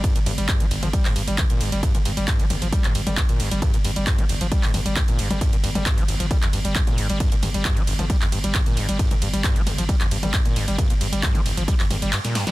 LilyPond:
<<
  \new Staff \with { instrumentName = "Acid bass" } { \clef bass \time 4/4 \key g \minor \tempo 4 = 134 g,16 bes,16 g,16 g16 g,16 g16 g,,16 f16 g16 g,16 g,16 g16 g,16 bes,16 g,16 g16 | g,16 bes,16 g,16 g16 g,16 g16 g,,16 f16 g16 g,16 g,16 g16 g,16 bes,16 g,16 g16 | g,16 bes,16 g,16 g16 g,16 g16 g,,16 f16 g16 g,16 g,16 g16 g,16 bes,16 g,16 g16 | g,16 bes,16 g,16 g16 g,16 g16 g,,16 f16 g16 f,16 g,16 g16 g,16 bes,16 g,16 g16 |
g,16 bes,16 g,16 g16 g,16 g16 g,,16 f16 g16 f,16 g,16 g16 g,16 bes,16 g,16 g16 | g,16 bes,16 g,16 g16 g,16 g16 g,,16 f16 g16 f,16 g,16 g16 g,16 bes,16 g,16 g16 | g,16 bes,16 g,16 g16 g,16 g16 g,,16 f16 g16 f,16 g,16 g16 g,16 bes,16 g,16 g16 | }
  \new Staff \with { instrumentName = "808-style bass" } { \clef bass \time 4/4 \key g \minor r16 g,,16 g,,16 g,,16 r16 g,,16 g,,16 g,,16 r16 g,,16 g,,16 g,,16 r16 g,,16 g,,16 g,,16 | r16 g,,16 g,,16 g,,16 r16 g,,16 g,,16 g,,16 r16 g,,16 g,,16 g,,16 r16 g,,16 g,,16 g,,16 | r16 g,,16 g,,16 g,,16 r16 g,,16 g,,16 g,,16 r16 g,,16 g,,16 g,,16 r16 g,,16 g,,16 g,,16 | r16 g,,16 g,,16 g,,16 r16 g,,16 g,,16 g,,16 r16 g,,16 g,,16 g,,16 r16 g,,16 g,,16 g,,16 |
r16 g,,16 g,,16 g,,16 r16 g,,16 g,,16 g,,16 r16 g,,16 g,,16 g,,16 r16 g,,16 g,,16 g,,16 | r16 g,,16 g,,16 g,,16 r16 g,,16 g,,16 g,,16 r16 g,,16 g,,16 g,,16 r16 g,,16 g,,16 g,,16 | r16 g,,16 g,,16 g,,16 r16 g,,16 g,,16 g,,16 r16 g,,16 g,,16 g,,16 r4 | }
  \new DrumStaff \with { instrumentName = "Drums" } \drummode { \time 4/4 <hh bd cymr>16 hh16 <hho cymr toml>16 hh16 <hc hh bd>16 hh16 <hho cymr>16 <hh toml>16 <hh bd cymr>16 <hc hho>16 <hho cymr>16 hh16 <hc hh bd cymr toml>16 hh16 <hho cymr>16 hh16 | <hh bd cymr>16 <hh toml>16 <hho cymr>16 hh16 <hc hh bd cymr>16 hh16 <hho cymr toml>16 hh16 <hh bd cymr>16 <hc hh>16 <hho cymr>16 <hh toml>16 <hc hh bd cymr>16 hh16 <hho cymr>16 hh16 | <hh bd cymr toml>16 hh16 <hho cymr>16 hh16 <hc hh bd cymr>16 <hh toml>16 <hho cymr>16 hh16 <hh bd cymr>16 <hc hho>16 <hho cymr toml>16 hh16 <hc hh bd cymr>16 hh16 <hho cymr>16 <hh toml>16 | <hh bd cymr>16 hh16 <hho cymr>16 <hh toml>16 <hc hh bd cymr>16 hh16 <hho cymr>16 hh16 <hh bd cymr toml>16 <hc hh>16 <hho cymr>16 hh16 <hc hh bd>16 <hh toml>16 <hho cymr>16 hh16 |
<hh bd cymr>16 hh16 <hho cymr toml>16 hh16 <hc hh bd cymr>16 hh16 <hho cymr>16 <hh toml>16 <hh bd cymr>16 <hc hho>16 <hho cymr>16 hh16 <hc hh bd cymr toml>16 hh16 <hho cymr>16 hh16 | <hh bd cymr>16 <hh toml>16 <hho cymr>16 hh16 <hc hh bd cymr>16 hh16 <hho cymr toml>16 hh16 <hh bd cymr>16 <hc hh>16 <hho cymr>16 <hh toml>16 <hc hh bd cymr>16 hh16 <hho cymr>16 hh16 | <hh bd cymr toml>16 hh16 <hho cymr>16 hh16 <hc hh bd cymr>16 <hh toml>16 <hho cymr>16 hh16 <hh bd cymr>16 <hc hho>16 <hho cymr toml>16 hh16 <hc hh cymr>16 <hh sn>16 <hho cymr sn>16 <hh sn toml>16 | }
>>